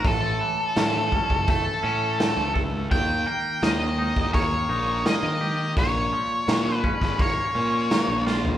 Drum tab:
HH |o---o---o---o---|o---o---o---o---|o---o---o---o---|
SD |----o-------o---|----o-------o---|----o--o----o-o-|
FT |----------------|----------------|---------------o|
BD |o-----ooo-----o-|o------oo-------|o-----ooo-------|